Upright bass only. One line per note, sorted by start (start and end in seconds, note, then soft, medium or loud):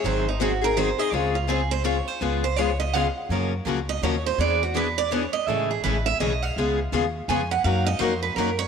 0.04 0.91 G#1 medium
1.12 1.99 C#2 medium
2.21 3.08 C#2 medium
3.29 3.59 F#2 medium
3.65 3.97 C#2 medium
4.02 4.33 D#2 medium
4.38 5.25 E2 medium
5.47 5.76 A1 medium
5.84 6.15 A1 medium
6.20 6.51 B1 medium
6.56 6.85 C#2 medium
6.92 7.23 D#2 medium
7.28 7.59 F2 medium
7.64 7.94 F#2 loud
8.00 8.31 F2 medium
8.36 8.67 F#2 medium